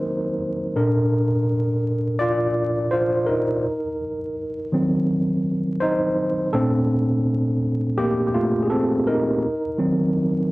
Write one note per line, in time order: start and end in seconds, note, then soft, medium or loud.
0.00 0.77 D#4 medium
0.00 0.77 A#4 loud
0.00 0.35 C5 medium
0.76 1.26 A#2 soft
0.76 2.17 D4 medium
0.76 1.26 A4 soft
0.76 2.25 A#4 medium
2.19 2.89 F4 medium
2.19 2.94 D5 loud
2.91 3.26 F4 medium
2.91 3.29 C5 medium
3.26 3.97 D#4 medium
3.26 3.96 A#4 medium
4.72 5.23 D#3 medium
4.72 5.23 F#3 soft
4.72 5.24 C4 medium
5.80 6.50 D#4 medium
5.80 6.56 C5 medium
6.53 7.58 A#2 medium
6.53 7.58 A3 soft
6.53 7.95 C4 medium
6.53 7.58 D4 medium
6.53 7.94 A4 loud
7.98 8.27 A#3 medium
7.98 8.26 G4 loud
8.27 8.34 G4 medium
8.34 8.63 A3 medium
8.34 8.66 F4 medium
8.62 8.70 G#4 medium
8.70 9.05 C4 medium
8.70 9.04 A4 medium
9.07 10.52 D#4 medium
9.07 10.52 A#4 medium
9.78 10.29 D#3 medium
9.78 10.29 F#3 medium
9.78 10.29 C4 medium